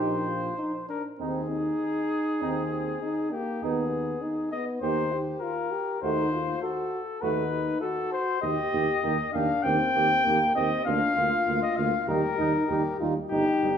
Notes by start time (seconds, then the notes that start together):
Already playing: A#1 D#4 G4 C5
0.26 F4
0.58 D#4
0.88 D4 A#4
1.19 D#2 C4 D#4 G#4
1.51 D#4
2.42 D#2 C4 D#4
3.02 D#4
3.32 A#3 G4
3.62 D#2 B3 D#4 G#4
4.22 D#4
4.52 B3 D#5
4.81 D#2 A#3 D#4 G4 C5
5.13 G4
5.41 F4 A#4
5.72 G4
6.02 D#2 A3 D#4 F#4 C5
6.32 F4
6.62 F#4 A4
7.22 D#2 A3 D#4 F#4 B4
7.81 F#4 A4
8.12 C5
8.42 D#2 A#3 G4 D#5
8.72 D#2 A#3 G4
9.03 D#2 A#3 D#4 G4
9.33 D#2 A#3 D4 G4 F5
9.63 D#2 A#3 C4 G4 G5
9.94 D#2 A#3 G4
10.24 D#2 A#3 G4
10.55 D#2 A#3 C4 G4 D#5
10.86 D2 A#3 D4 F4 F5
11.16 D2 A#3 F4
11.47 D2 A#3 F4
11.62 D#5
11.76 D2 A#3 F4 F5
12.07 D#2 G3 D#4 G4 A#4
12.38 D#2 G3 D#4
12.68 D#2 G3 D#4 G4
13.00 D#2 G3 D#4 F4
13.30 G1 G3 D#4 G4
13.61 G1 G3 D#4